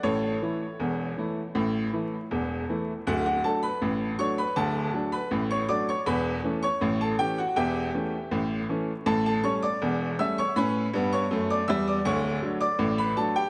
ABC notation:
X:1
M:2/4
L:1/16
Q:1/4=80
K:D
V:1 name="Grand piano"
[Ac]8- | [Ac]4 z4 | [Ff] [Ff] [Aa] [Bb]3 [cc'] [Bb] | [Afa]3 [Bb]2 [cc'] [dd'] [cc'] |
[Bb]3 [cc']2 [Aa] [Gg] [Ff] | [Geg]6 z2 | [Aa] [Aa] [cc'] [dd']3 [ee'] [cc'] | [Bb]3 [cc']2 [dd'] [ee'] [dd'] |
[cc']3 [dd']2 [Bb] [Aa] [Gg] |]
V:2 name="Grand piano" clef=bass
[A,,,A,,]2 [E,A,E]2 [E,,,E,,]2 [E,A,E]2 | [A,,,A,,]2 [E,A,E]2 [E,,,E,,]2 [E,A,E]2 | [D,,,D,,]2 [F,A,D]2 [A,,,A,,]2 [F,A,D]2 | [D,,,D,,]2 [F,A,D]2 [A,,,A,,]2 [F,A,D]2 |
[E,,,E,,]2 [E,A,C]2 [A,,,A,,]2 [E,A,C]2 | [E,,,E,,]2 [E,A,C]2 [A,,,A,,]2 [E,A,C]2 | [A,,,A,,]2 [G,A,C]2 [E,,,E,,]2 [G,A,C]2 | [A,,C]2 [G,,B,]2 [F,,A,]2 [E,,G,]2 |
[D,,,D,,]2 [F,A,D]2 [A,,,A,,]2 [F,A,D]2 |]